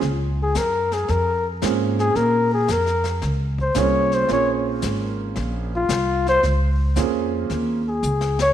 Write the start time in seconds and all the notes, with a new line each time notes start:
0.01 C#2, brush sweep, snare
0.43 G#4
0.55 F#2 A#4, snare, hi-hat pedal
0.92 G#4, snare
1.08 F2 A#4, brush sweep, snare
1.62 G#2 A#3 C4 C#4 F4 G#4, snare, hi-hat pedal
1.99 G#4, snare
2.15 A#2 A#4, brush sweep, snare
2.53 G#4
2.68 F2 A#4, snare, hi-hat pedal
2.86 snare
3.04 snare
3.22 C#2, brush sweep, snare
3.58 C5, kick
3.74 C2 A#3 C4 C#4 F4 G#4, snare, hi-hat pedal
3.79 C#5
4.12 C5, snare
4.28 A#1 A#3 C4 C#4 F4 G#4, brush sweep, snare
4.33 C#5
4.82 G#1, snare, hi-hat pedal
5.36 A#1, brush sweep, snare
5.76 F4
5.89 C2, snare, hi-hat pedal
6.26 C5, snare
6.43 C#2, brush sweep, snare
6.96 F2 A#3 C4 C#4 F4 G#4, snare, hi-hat pedal
7.50 D#2, brush sweep, snare
7.88 G#4
8.03 C#2, hi-hat pedal
8.21 snare
8.39 C#5, snare